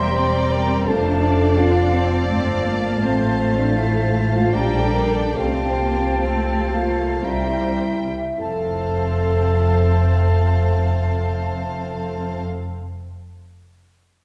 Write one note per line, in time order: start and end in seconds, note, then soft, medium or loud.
0.00 0.84 E1 soft
0.00 0.16 G3 medium
0.00 0.83 G3 medium
0.00 0.16 A#3 medium
0.00 0.13 C5 medium
0.00 2.85 C5 medium
0.00 0.14 E5 medium
0.00 0.83 G5 medium
0.00 0.89 A#5 medium
0.00 0.15 C6 medium
0.14 0.86 G3 medium
0.14 0.85 C4 medium
0.14 0.50 C5 medium
0.14 0.87 D5 medium
0.14 0.51 C6 medium
0.50 0.86 A#4 medium
0.50 0.87 A#5 medium
0.85 2.27 F1 soft
0.85 5.00 F3 medium
0.85 1.59 A3 medium
0.85 1.58 D4 medium
0.85 1.58 A4 medium
0.85 1.23 C5 soft
0.85 4.50 F5 medium
0.85 1.59 A5 medium
0.85 4.57 A5 medium
1.24 2.99 D5 medium
1.57 2.30 C4 medium
1.57 1.95 D4 soft
1.57 2.30 F4 medium
1.57 2.29 F5 medium
1.95 2.28 C4 medium
2.30 3.02 G1 soft
2.30 4.50 A3 medium
2.30 2.65 C4 medium
2.66 3.02 A#3 medium
3.01 4.52 A1 soft
3.01 4.54 A3 medium
3.01 3.53 C4 medium
3.01 3.53 C5 medium
3.01 4.54 C5 soft
3.01 3.75 C5 soft
3.56 3.77 D4 medium
3.56 3.76 D5 soft
3.76 4.34 E4 medium
3.76 4.53 C5 soft
3.76 4.33 E5 medium
4.33 4.53 F4 medium
4.33 4.54 F5 medium
4.53 5.36 A#1 soft
4.53 5.36 G3 medium
4.53 5.36 D4 medium
4.53 4.74 G4 medium
4.53 5.89 D5 soft
4.53 5.36 D5 soft
4.53 5.34 G5 soft
4.53 4.74 G5 medium
4.53 5.07 A#5 soft
4.72 4.95 A4 medium
4.72 4.93 A5 medium
4.93 5.14 A#4 medium
4.93 5.14 A#5 medium
5.12 5.34 A4 medium
5.12 5.35 A5 soft
5.33 7.26 F3 soft
5.33 5.78 A3 soft
5.33 6.24 C4 soft
5.33 6.72 G4 medium
5.33 6.25 C5 soft
5.33 6.22 F5 soft
5.33 6.70 G5 medium
5.37 7.22 C2 soft
5.37 7.26 A5 soft
5.80 6.24 A#3 soft
6.23 6.73 A3 soft
6.23 6.73 C4 soft
6.23 7.26 A4 soft
6.23 7.88 C5 soft
6.23 7.23 F5 soft
6.71 7.26 A3 soft
6.71 7.25 A#3 soft
6.71 7.24 F4 medium
6.71 7.24 F5 medium
7.21 7.92 G3 soft
7.21 7.82 C4 soft
7.21 8.39 E4 medium
7.21 8.10 C5 soft
7.21 7.91 A#5 soft
7.25 8.10 C2 soft
7.25 8.09 G3 soft
7.25 8.41 E5 soft
7.25 8.11 G5 soft
8.38 12.42 F1 soft
8.38 12.42 F2 soft
8.38 12.42 A3 soft
8.38 12.42 C4 soft
8.38 12.41 A4 medium
8.38 12.43 A4 soft
8.38 12.42 F5 soft
8.38 12.42 A5 soft
8.42 12.43 C5 soft